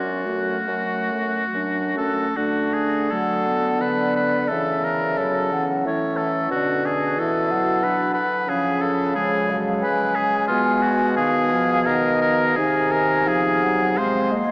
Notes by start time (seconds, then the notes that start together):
Already playing: F#2 F#3 C#4 F#4
0.26 A3 F#4
0.67 F#2 F#3 A3
1.12 A3
1.53 F#2 F#3 D4
1.97 A3 C#4 A4
2.36 D3 A3 D4 F#4
2.73 G#4
3.11 F#3 A3 A4 F#5
3.47 B3
3.79 D3 B4 D5
4.16 B4
4.48 C#3 E3 C#4 A4 E5
4.84 A#4
5.17 F#3 A4 C#5
5.51 E3 F#5
5.85 A2 E3 C#5 E5
6.17 A4
6.51 B2 D3 F#4 D5
6.85 G#4
7.17 E3 E4 A4 E5
7.51 F#3 F#5
7.83 D4 B4
8.14 B4
8.47 C#3 F3 C#4 G#4 F5
8.81 A4
9.15 F3 G#3 G#4 C#5
9.50 F#3 F5
9.83 G#3 B4 G#5
10.15 G#4
10.48 B2 G#3 B3 F4 G#5
10.82 F#4
11.15 D#3 B3 G#4 F5
11.53 F3
11.86 D#3 A#4 D#5
12.21 A#4
12.56 C3 D#3 D#4 G#4 G#5
12.92 A#4
13.27 F3 G#4 F5
13.63 F#3 F#5
13.97 G#3 C4 C5 F5
14.32 A#3 D#5